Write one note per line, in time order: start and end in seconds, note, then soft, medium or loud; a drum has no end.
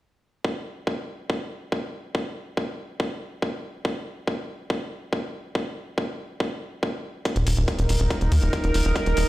0.44 kick loud
0.87 kick loud
1.30 kick loud
1.72 kick loud
2.15 kick loud
2.57 kick loud
3.00 kick loud
3.42 kick loud
3.85 kick loud
4.27 kick loud
4.70 kick loud
5.13 kick loud
5.55 kick loud
5.98 kick loud
6.40 kick loud
6.83 kick loud
7.25 9.29 D#4 medium
7.25 9.29 A#4 medium
7.25 kick loud
7.25 closed hi-hat medium
7.36 7.43 D#1 medium
7.36 closed hi-hat soft
7.47 7.54 D#1 loud
7.47 open hi-hat loud
7.57 7.65 D#1 medium
7.57 closed hi-hat soft
7.68 kick loud
7.68 closed hi-hat medium
7.79 7.86 D#1 medium
7.79 closed hi-hat medium
7.89 7.97 D#1 loud
7.89 open hi-hat loud
8.00 8.07 D#1 loud
8.00 closed hi-hat soft
8.10 kick loud
8.10 closed hi-hat medium
8.21 8.29 D#1 medium
8.21 closed hi-hat soft
8.32 8.39 D#2 loud
8.32 open hi-hat loud
8.42 8.50 D#1 medium
8.42 closed hi-hat soft
8.53 kick loud
8.53 closed hi-hat medium
8.64 8.71 D#1 medium
8.64 closed hi-hat soft
8.74 8.82 D#1 loud
8.74 open hi-hat loud
8.85 8.92 D#1 medium
8.85 closed hi-hat soft
8.96 kick loud
8.96 closed hi-hat medium
9.06 9.14 D#1 medium
9.06 closed hi-hat medium
9.17 9.24 D#1 loud
9.17 open hi-hat loud